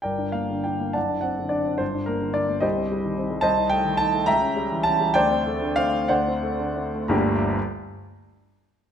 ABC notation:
X:1
M:6/8
L:1/16
Q:3/8=68
K:Gm
V:1 name="Grand piano"
[Bdg]2 f2 g2 [d^fa]2 f2 d2 | c2 B2 d2 [Gce]6 | [cea]2 g2 a2 [=eg^a]4 =a2 | [cdg]4 f2 [cd^f]6 |
[G,,,D,,G,B,DGb]2 z8 z2 |]
V:2 name="Grand piano"
G,,, D B, D, D B, ^F,,, D C D, D C | G,,, D B, D, D B, C,, C G, E, C G, | C,, E A, E, E A, ^C,, ^C G, =E, C G, | D,, C A, D, C A, D,, C A, D, C A, |
z12 |]